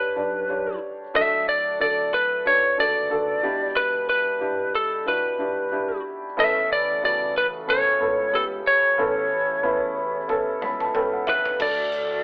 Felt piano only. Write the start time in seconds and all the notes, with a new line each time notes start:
Already playing: G2 D3 D4 G4 B4 C#5
0.16 D4 G4 D5
0.49 D4 G4 C#5
1.14 A2 D4 F#4 A4
1.79 D4 F#4 A4
2.45 D4 F#4 B4
2.78 D4 F#4 A4
3.10 D4 F#4 A4
3.42 B2 D4 E4 G4
4.40 D4 E4 G4
5.06 D4 E4 F#4
5.39 D4 E4 G4
5.71 D4 E4 G4
6.37 A2 E3 B3 C#4 A4
7.02 C#3 B3 F#4
7.67 B3 C#4 A4
8.00 B3 C#4 A4
8.33 B3 C#4 G4
8.98 A2 E3 B3 C#4 A4
9.63 B3 C#4 E4
10.28 B3 C#4 A4
10.61 B3 C#4 B4 B5
10.81 A5
10.94 B3 C#4 A4 G5
11.13 F#5
11.27 E5
11.59 A2 D4 F#4 A4